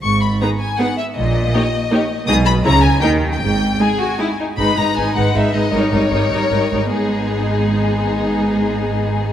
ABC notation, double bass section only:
X:1
M:3/4
L:1/8
Q:1/4=155
K:G#m
V:1 name="Double bass section" clef=bass
G,,,2 z4 | A,,,2 z4 | B,,,2 C,,2 D,,2 | G,,,2 z4 |
G,,, G,,, G,,, G,,, G,,, G,,, | G,,, G,,, G,,, G,,, G,,, G,,, | G,,,6- | G,,,6 |]